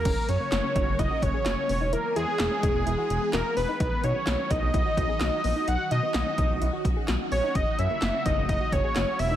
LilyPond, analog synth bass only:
\new Staff \with { instrumentName = "Analog synth bass" } { \clef bass \time 4/4 \key fis \mixolydian \tempo 4 = 128 fis,,16 r16 fis,16 r16 fis,,16 r16 fis,,16 fis,,16 fis,,16 r16 fis,,16 r16 fis,,16 r16 e,,8~ | e,,16 r16 e,16 r16 e,,16 r16 e,,16 e,,16 e,,16 r16 e,,16 r16 e,,16 r16 e,,16 r16 | b,,16 r16 b,16 r16 b,,16 r16 b,,16 b,,16 b,,16 r16 b,,16 r16 b,,16 r16 ais,,16 r16 | b,,16 r16 b,16 r16 b,,16 r16 b,,16 b,,16 b,,16 r16 b,,16 r16 b,,16 r16 ais,,16 r16 |
fis,,16 r16 fis,16 r16 fis,,16 r16 fis,,16 fis,,16 fis,,16 r16 fis,,16 r16 fis,,16 r16 e,,8 | }